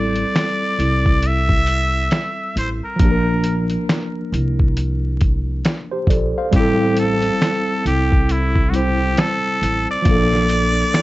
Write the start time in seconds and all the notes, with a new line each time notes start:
Already playing: A1 G3 C4 E4 A4 D5
0.16 closed hi-hat
0.36 finger snap, snare, closed hi-hat
0.79 C2, closed hi-hat
1.06 kick
1.23 closed hi-hat
1.27 E5
1.49 kick
1.67 closed hi-hat
2.11 finger snap, snare, closed hi-hat
2.56 A1 C5, closed hi-hat
2.85 A#4
2.96 A#1 F3 A#3, kick, closed hi-hat
3.02 D4 G4
3.11 A#4
3.44 closed hi-hat
3.70 closed hi-hat
3.89 finger snap, snare, closed hi-hat
4.32 C2, closed hi-hat
4.60 kick
4.77 closed hi-hat
5.21 kick, closed hi-hat
5.65 finger snap, snare, closed hi-hat
5.91 G4 C5
6.07 A#1 A4 D5, kick, closed hi-hat
6.38 C5 F5
6.51 A1 G3 C4, kick, closed hi-hat
6.56 E4 G4 A4
6.97 A4, closed hi-hat
7.22 closed hi-hat
7.42 finger snap, snare, closed hi-hat
7.85 C2 G4, closed hi-hat
8.12 kick
8.29 E4, closed hi-hat
8.56 kick
8.70 G3 C4 F#4
8.74 E4 G4 C5, closed hi-hat
9.17 A4, finger snap, snare, closed hi-hat
9.62 A1, closed hi-hat
9.91 D5
10.02 A#1 F3 A#3, kick, closed hi-hat
10.08 D4 A4
10.33 snare
10.49 closed hi-hat
10.94 finger snap, snare, closed hi-hat